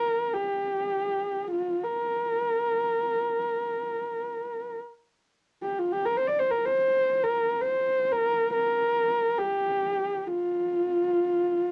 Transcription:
horsehead fiddle
Already playing: A#4
0.34 G4
1.51 F4
1.84 A#4
5.62 G4
5.78 F4
5.92 G4
6.05 A#4
6.17 C5
6.27 D5
6.39 C5
6.51 A#4
6.66 C5
7.23 A#4
7.61 C5
8.12 A#4
8.53 A#4
9.38 G4
10.27 F4

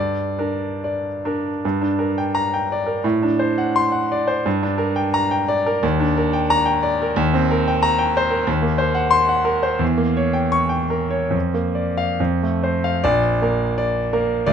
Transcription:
grand piano
Already playing: G2 D5
0.39 D4 A#4
0.84 D5
1.25 D4 A#4
1.65 G2
1.81 D4
1.99 A#4
2.18 G5
2.35 A#5
2.54 G5
2.72 D5
2.86 A#4
3.04 A2
3.23 D4
3.39 C5
3.58 F#5
3.76 C6
3.92 F#5
4.12 D5
4.27 C5
4.46 G2
4.63 D4
4.78 A#4
4.96 G5
5.14 A#5
5.31 G5
5.48 D5
5.66 A#4
5.83 D#2
6.00 D4
6.17 A#4
6.33 G5
6.50 A#5
6.66 G5
6.83 D5
7.02 A#4
7.16 D#2
7.34 C4
7.51 A#4
7.68 G5
7.83 A#5
7.99 G5
8.17 C5
8.30 A#4
8.47 D#2
8.62 A#3
8.78 C5
8.95 F#5
9.11 C6
9.29 F#5
9.45 A#4
9.63 C5
9.79 E2
9.97 A#3
10.17 C#5
10.33 G5
10.52 C#6
10.69 G5
10.90 A#4
11.11 C#5
11.31 F2
11.54 A#3
11.75 D5
11.98 F5
12.20 F2
12.43 A3
12.63 C5
12.84 F5
13.04 A#1 D5
13.42 A#3 A#4
13.78 D5
14.13 A#3 A#4
14.46 D2 D5

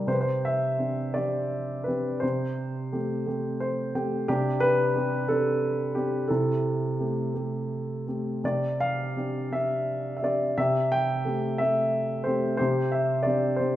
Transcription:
grand piano
0.07 C3 G4 C5
0.12 B4
0.21 C5
0.45 E5
0.79 C4 D4 G4
1.14 C4 D4 G4 D5
1.84 B4
1.88 C4 D4 G4
2.20 C3 G4 C5
2.92 A3 C4 G4
3.26 A3 C4 G4
3.60 C5
3.95 A3 C4 G4 G5
4.28 C3 D4 G4
4.60 B4
4.96 C4 D4 G4
5.28 C4 D4 G4 A4
5.95 C4 D4 G4
6.28 C3 E4 A4
6.99 A3 C4 G4
7.34 A3 C4 G4
8.07 A3 C4 G4
8.44 C3 G4 D5
8.80 F5
9.17 C4 D4 G4
9.52 C4 D4 G4 E5
10.17 E5
10.22 C4 D4 G4 D5
10.58 C3 G4 E5
10.92 G5
11.25 A3 C4 G4
11.58 A3 C4 G4 E5
12.24 A3 C4 G4 C5
12.57 C3 G4 C5
12.92 E5
13.23 C4 D5
13.27 D4 G4
13.56 C4 C5
13.60 D4 G4

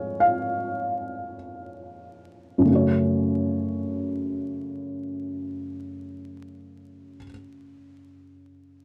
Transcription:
felt piano
Already playing: F2 F3 G#3 C#5 F5
0.20 F5
2.58 F#2 C#3
2.65 A3 C#4
2.72 F#4 C#5

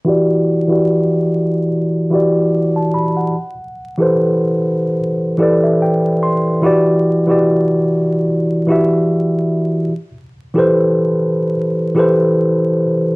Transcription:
tine electric piano
0.05 E3 E4 F#4 G4
0.09 D5
0.68 E3 E4 F#4 G4
0.73 D5
2.10 E3 E4 F#4 G4
2.15 D5
2.76 A5
2.94 B5
3.17 F#5
3.97 E3 E4 G4 A4 B4
4.02 C5
5.38 E3 E4 G4 A4 B4 D5
5.43 D5
5.64 E5
5.82 G5
6.23 C6
6.62 E3 E4 F#4 G4
6.67 D5
7.27 E3 E4 F#4 G4
7.31 D5
8.67 E3 E4 F#4 G4
8.71 E5
10.54 E3 E4 G4 A4
10.58 B4 C5
11.95 E3 E4 G4 A4 B4
11.99 C5

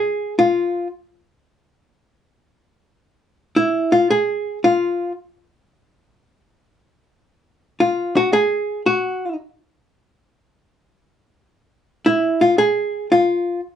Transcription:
hollow-body jazz guitar
Already playing: G#4
0.39 F4
3.56 E4
3.92 F4
4.10 G#4
4.64 F4
7.80 F4
8.17 F#4
8.33 G#4
8.86 F#4
12.06 E4
12.41 F4
12.58 G#4
13.12 F4

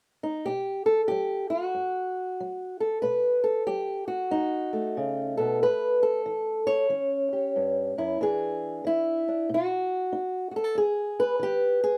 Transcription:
steel-string acoustic guitar
0.23 D#4
0.46 B2 G4
0.86 A4
1.08 F#3 G4
1.50 F#4
1.75 F#2
2.40 F#3
2.80 A4
3.02 B2 B4
3.44 A4
3.67 F#3 G4
4.08 F#4
4.31 F#2 D#4
4.73 A3
4.97 C#3
5.37 B2 A4
5.63 A2 B4
6.03 A4
6.26 E3
6.67 C#5
6.89 E3 C#4
7.33 G4
7.56 G2
7.98 F#2 E4
8.21 E2 E3 D4 G#4
8.85 E3 E4
9.28 D4
9.49 B2
9.54 F#4
10.12 D#4
10.51 F#4
10.56 A4
10.64 A4
10.75 E2 G#4
11.20 B4
11.39 E3 G4
11.84 G#4

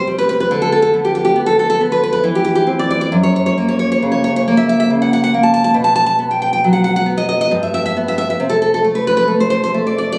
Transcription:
nylon-string guitar
Already playing: C3
0.07 G3
0.18 B4
0.29 B4
0.40 B4
0.51 D3
0.62 A4
0.72 A4
0.82 A4
0.94 B3
1.05 G4
1.15 G4
1.25 G4
1.36 B3
1.46 A4
1.59 A4
1.70 A4
1.81 B3
1.92 B4
2.03 B4
2.13 B4
2.24 E3
2.35 G4
2.45 G4
2.55 G4
2.67 C4
2.79 D5
2.91 D5
3.01 D5
3.12 F#2
3.23 C#5
3.36 C#5
3.46 C#5
3.58 A#3
3.68 C#5
3.79 C#5
3.92 C#5
4.02 C#3
4.12 C#5
4.24 C#5
4.36 C#5
4.48 A#3
4.57 E5
4.69 E5
4.80 E5
4.90 C#3
5.02 F#5
5.13 F#5
5.24 F#5
5.34 A#3
5.43 A5
5.54 A5
5.64 A5
5.74 B2
5.84 A5
5.96 A5
6.06 A5
6.19 B3
6.31 G5
6.42 G5
6.53 G5
6.64 F#3
6.73 F#5
6.84 F#5
6.96 F#5
7.06 B3
7.18 D#5
7.29 D#5
7.41 D#5
7.51 G2
7.63 E5
7.74 E5
7.86 E5
7.97 B3
8.08 E5
8.18 E5
8.30 E5
8.40 C3
8.49 A4
8.62 A4
8.74 A4
8.84 A3
8.95 B4
9.07 B4
9.17 B4
9.28 A3
9.40 C5
9.50 C5
9.64 C5
9.74 A3
9.87 D5
9.98 D5
10.12 D5

